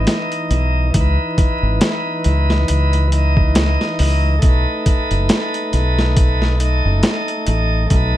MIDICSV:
0, 0, Header, 1, 4, 480
1, 0, Start_track
1, 0, Key_signature, 4, "minor"
1, 0, Tempo, 869565
1, 524, Time_signature, 4, 2, 24, 8
1, 4510, End_track
2, 0, Start_track
2, 0, Title_t, "Tonewheel organ"
2, 0, Program_c, 0, 16
2, 0, Note_on_c, 0, 52, 73
2, 0, Note_on_c, 0, 63, 68
2, 0, Note_on_c, 0, 75, 84
2, 484, Note_off_c, 0, 52, 0
2, 497, Note_off_c, 0, 63, 0
2, 500, Note_on_c, 0, 52, 83
2, 513, Note_off_c, 0, 75, 0
2, 524, Note_on_c, 0, 63, 77
2, 554, Note_on_c, 0, 71, 90
2, 1687, Note_off_c, 0, 52, 0
2, 1698, Note_on_c, 0, 52, 75
2, 1699, Note_off_c, 0, 63, 0
2, 1714, Note_off_c, 0, 71, 0
2, 1727, Note_on_c, 0, 63, 66
2, 1753, Note_on_c, 0, 75, 85
2, 2406, Note_off_c, 0, 52, 0
2, 2420, Note_off_c, 0, 63, 0
2, 2421, Note_on_c, 0, 57, 79
2, 2434, Note_off_c, 0, 75, 0
2, 2448, Note_on_c, 0, 63, 80
2, 2476, Note_on_c, 0, 71, 91
2, 3608, Note_off_c, 0, 57, 0
2, 3618, Note_on_c, 0, 57, 73
2, 3621, Note_off_c, 0, 63, 0
2, 3635, Note_off_c, 0, 71, 0
2, 3644, Note_on_c, 0, 63, 66
2, 3670, Note_on_c, 0, 75, 85
2, 4326, Note_off_c, 0, 57, 0
2, 4339, Note_off_c, 0, 63, 0
2, 4340, Note_on_c, 0, 57, 82
2, 4352, Note_off_c, 0, 75, 0
2, 4366, Note_on_c, 0, 63, 79
2, 4394, Note_on_c, 0, 71, 94
2, 4510, Note_off_c, 0, 57, 0
2, 4510, Note_off_c, 0, 63, 0
2, 4510, Note_off_c, 0, 71, 0
2, 4510, End_track
3, 0, Start_track
3, 0, Title_t, "Fingered electric bass"
3, 0, Program_c, 1, 33
3, 279, Note_on_c, 1, 35, 92
3, 496, Note_off_c, 1, 35, 0
3, 523, Note_on_c, 1, 37, 86
3, 643, Note_off_c, 1, 37, 0
3, 899, Note_on_c, 1, 32, 75
3, 991, Note_off_c, 1, 32, 0
3, 1245, Note_on_c, 1, 37, 84
3, 1460, Note_off_c, 1, 37, 0
3, 1488, Note_on_c, 1, 37, 70
3, 2076, Note_off_c, 1, 37, 0
3, 2207, Note_on_c, 1, 37, 86
3, 2420, Note_off_c, 1, 37, 0
3, 2446, Note_on_c, 1, 35, 85
3, 2565, Note_off_c, 1, 35, 0
3, 2820, Note_on_c, 1, 30, 79
3, 2912, Note_off_c, 1, 30, 0
3, 3165, Note_on_c, 1, 35, 78
3, 3755, Note_off_c, 1, 35, 0
3, 3783, Note_on_c, 1, 30, 89
3, 3873, Note_off_c, 1, 30, 0
3, 4127, Note_on_c, 1, 33, 94
3, 4340, Note_off_c, 1, 33, 0
3, 4365, Note_on_c, 1, 35, 93
3, 4485, Note_off_c, 1, 35, 0
3, 4510, End_track
4, 0, Start_track
4, 0, Title_t, "Drums"
4, 38, Note_on_c, 9, 42, 79
4, 41, Note_on_c, 9, 38, 103
4, 93, Note_off_c, 9, 42, 0
4, 97, Note_off_c, 9, 38, 0
4, 175, Note_on_c, 9, 42, 39
4, 230, Note_off_c, 9, 42, 0
4, 280, Note_on_c, 9, 42, 62
4, 335, Note_off_c, 9, 42, 0
4, 519, Note_on_c, 9, 42, 81
4, 521, Note_on_c, 9, 36, 99
4, 574, Note_off_c, 9, 42, 0
4, 576, Note_off_c, 9, 36, 0
4, 761, Note_on_c, 9, 42, 65
4, 762, Note_on_c, 9, 36, 92
4, 816, Note_off_c, 9, 42, 0
4, 817, Note_off_c, 9, 36, 0
4, 999, Note_on_c, 9, 42, 83
4, 1002, Note_on_c, 9, 38, 112
4, 1054, Note_off_c, 9, 42, 0
4, 1057, Note_off_c, 9, 38, 0
4, 1239, Note_on_c, 9, 42, 59
4, 1294, Note_off_c, 9, 42, 0
4, 1380, Note_on_c, 9, 38, 48
4, 1435, Note_off_c, 9, 38, 0
4, 1480, Note_on_c, 9, 42, 83
4, 1536, Note_off_c, 9, 42, 0
4, 1618, Note_on_c, 9, 42, 40
4, 1673, Note_off_c, 9, 42, 0
4, 1723, Note_on_c, 9, 42, 65
4, 1778, Note_off_c, 9, 42, 0
4, 1860, Note_on_c, 9, 36, 98
4, 1915, Note_off_c, 9, 36, 0
4, 1961, Note_on_c, 9, 42, 81
4, 1964, Note_on_c, 9, 38, 105
4, 2016, Note_off_c, 9, 42, 0
4, 2020, Note_off_c, 9, 38, 0
4, 2104, Note_on_c, 9, 38, 45
4, 2159, Note_off_c, 9, 38, 0
4, 2202, Note_on_c, 9, 46, 78
4, 2258, Note_off_c, 9, 46, 0
4, 2440, Note_on_c, 9, 42, 78
4, 2443, Note_on_c, 9, 36, 94
4, 2495, Note_off_c, 9, 42, 0
4, 2499, Note_off_c, 9, 36, 0
4, 2682, Note_on_c, 9, 42, 67
4, 2684, Note_on_c, 9, 36, 90
4, 2738, Note_off_c, 9, 42, 0
4, 2739, Note_off_c, 9, 36, 0
4, 2820, Note_on_c, 9, 42, 42
4, 2875, Note_off_c, 9, 42, 0
4, 2921, Note_on_c, 9, 42, 83
4, 2924, Note_on_c, 9, 38, 103
4, 2976, Note_off_c, 9, 42, 0
4, 2980, Note_off_c, 9, 38, 0
4, 3059, Note_on_c, 9, 42, 41
4, 3114, Note_off_c, 9, 42, 0
4, 3163, Note_on_c, 9, 42, 66
4, 3218, Note_off_c, 9, 42, 0
4, 3304, Note_on_c, 9, 38, 50
4, 3359, Note_off_c, 9, 38, 0
4, 3403, Note_on_c, 9, 42, 84
4, 3404, Note_on_c, 9, 36, 107
4, 3458, Note_off_c, 9, 42, 0
4, 3460, Note_off_c, 9, 36, 0
4, 3543, Note_on_c, 9, 38, 35
4, 3598, Note_off_c, 9, 38, 0
4, 3643, Note_on_c, 9, 42, 65
4, 3698, Note_off_c, 9, 42, 0
4, 3880, Note_on_c, 9, 42, 85
4, 3883, Note_on_c, 9, 38, 112
4, 3935, Note_off_c, 9, 42, 0
4, 3938, Note_off_c, 9, 38, 0
4, 4020, Note_on_c, 9, 42, 39
4, 4075, Note_off_c, 9, 42, 0
4, 4121, Note_on_c, 9, 42, 68
4, 4176, Note_off_c, 9, 42, 0
4, 4362, Note_on_c, 9, 42, 78
4, 4364, Note_on_c, 9, 36, 94
4, 4417, Note_off_c, 9, 42, 0
4, 4419, Note_off_c, 9, 36, 0
4, 4510, End_track
0, 0, End_of_file